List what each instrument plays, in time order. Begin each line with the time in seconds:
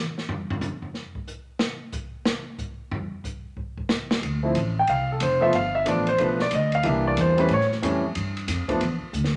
0.18 snare
0.29 floor tom
0.50 floor tom
0.61 floor tom, hi-hat pedal
0.82 floor tom
0.94 snare
1.15 kick
1.27 hi-hat pedal
1.59 snare
1.92 kick, hi-hat pedal
2.25 snare
2.58 kick, hi-hat pedal
2.91 floor tom
3.24 kick, hi-hat pedal
3.57 kick
3.78 kick
3.89 snare, hi-hat pedal
4.11 snare
4.22 upright bass D2, ride
4.43 grand piano F3 A3 C4 E4
4.55 upright bass A1, hi-hat pedal, ride
4.79 grand piano G5
4.87 upright bass C2, grand piano F5, ride
5.12 grand piano A4
5.20 upright bass F1, grand piano C5, hi-hat pedal, ride
5.41 grand piano F3 A3 B3 F4 E5
5.53 upright bass G1, grand piano F5, ride
5.75 grand piano E5
5.85 upright bass A1, grand piano F3 A3 B3 D4 D5, hi-hat pedal, ride
6.07 grand piano C5, ride
6.18 upright bass B1, grand piano F3 A3 B3 D4, ride
6.22 grand piano B4
6.39 grand piano D5, snare
6.51 upright bass D2, grand piano D#5, hi-hat pedal, ride
6.72 grand piano F5, ride
6.83 upright bass C2, grand piano E3 G3 A#3 D4 E5, ride
7.08 grand piano D5
7.16 upright bass E2, hi-hat pedal, ride
7.21 grand piano C5
7.37 grand piano E3 G3 A3 C#4 B4, ride
7.49 upright bass A2, ride
7.54 grand piano C#5
7.61 snare
7.72 snare
7.82 upright bass F2, grand piano E3 G3 A3 C#4, hi-hat pedal, ride
8.15 upright bass G2, ride
8.37 ride
8.48 upright bass F2, snare, hi-hat pedal, ride
8.68 grand piano F3 A3 B3 D4, muted upright bass stroke, kick, ride
8.81 upright bass E2, ride
9.01 muted upright bass stroke
9.13 upright bass D2, hi-hat pedal
9.24 snare